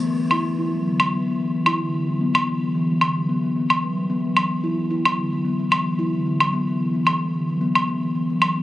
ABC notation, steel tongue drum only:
X:1
M:4/4
L:1/16
Q:"Swing 16ths" 1/4=111
K:Em
V:1 name="Steel tongue drum" clef=bass
E, B, E E, E F, D, F, B, B, E, E, E D, D, F, | B, B, E, E, E, G, D, F, B, B, B, E, F, G, B, F, | E, B, E E, E F, D, F, B, B, E, E, E D, D, F, | B, B, E, E, E, G, D, F, B, B, B, E, E, F, E, B, |]